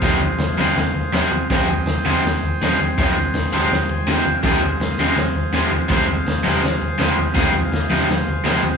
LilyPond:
<<
  \new Staff \with { instrumentName = "Transistor combo organ" } { \time 4/4 \key f \minor \tempo 4 = 164 << { r1 | r1 | r2 r8 aes''8 f''4 | r1 |
r1 | r1 | } \\ { <aes' c'' f''>1 | <aes' c'' g''>1~ | <aes' c'' g''>1 | <aes' c'' f''>1~ |
<aes' c'' f''>1 | <aes' c'' f''>1 | } >> }
  \new Staff \with { instrumentName = "Overdriven electric guitar" } { \clef bass \time 4/4 \key f \minor <f, c f aes c'>8 r4 <f, c f aes c'>8 r4 <f, c f aes c'>8 r8 | <f, c f aes c'>8 r4 <f, c f aes c'>8 r4 <f, c f aes c'>8 r8 | <f, c f aes c'>8 r4 <f, c f aes c'>8 r4 <f, c f aes c'>8 r8 | <f, c f aes c'>8 r4 <f, c f aes c'>8 r4 <f, c f aes c'>8 r8 |
<f, c f aes c'>8 r4 <f, c f aes c'>8 r4 <f, c f aes c'>8 r8 | <f, c f aes c'>8 r4 <f, c f aes c'>8 r4 <f, c f aes c'>8 r8 | }
  \new DrumStaff \with { instrumentName = "Drums" } \drummode { \time 4/4 <bd sn tomfh>8 tomfh8 <sn tomfh>8 tomfh8 <sn tomfh>8 tomfh8 <sn tomfh>8 tomfh8 | <bd sn tomfh>8 tomfh8 <sn tomfh>8 tomfh8 <sn tomfh>8 tomfh8 <sn tomfh>8 tomfh8 | <bd sn tomfh>8 tomfh8 <sn tomfh>8 tomfh8 <sn tomfh>8 tomfh8 <sn tomfh>8 tomfh8 | <bd sn tomfh>8 tomfh8 <sn tomfh>8 tomfh8 <sn tomfh>8 tomfh8 <sn tomfh>8 tomfh8 |
<bd sn tomfh>8 tomfh8 <sn tomfh>8 tomfh8 <sn tomfh>8 tomfh8 <sn tomfh>8 tomfh8 | <bd sn tomfh>8 tomfh8 <sn tomfh>8 tomfh8 <sn tomfh>8 tomfh8 <sn tomfh>8 tomfh8 | }
>>